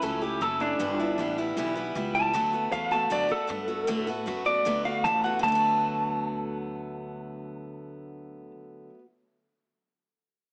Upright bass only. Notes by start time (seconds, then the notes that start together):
0.03 C#2
0.41 F#1
0.80 G1
1.19 A1
1.57 B1
1.96 C#2
2.34 D2
2.72 E2
3.11 F#2
3.31 muted upright bass stroke
3.50 G2
3.89 A2
4.27 F#2
4.66 D2
5.04 A1
5.43 D2